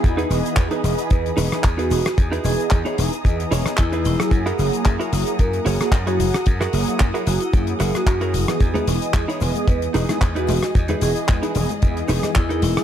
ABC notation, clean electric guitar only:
X:1
M:4/4
L:1/16
Q:"Swing 16ths" 1/4=112
K:Elyd
V:1 name="Clean electric guitar"
z [DEGB] z3 [DEGB] z4 [DEGB]2 z [DEGB]2 z | z [DEGB] z3 [DEGc] z4 [DEGc]2 z [DEGB]2 z | z [EFGA] z3 [EFGA] z4 [EFGc]2 z [EFGc]2 z | z [EFGA] z3 [EFGA] z4 [EFGA]2 z [EFGA]2 z |
z [DEGB] z3 [DEGc] z4 [DEGB]2 z [DEGB]2 z | z [DEGB] z3 [DEGB] z4 [DEGB]2 z [DEGA]2 z |]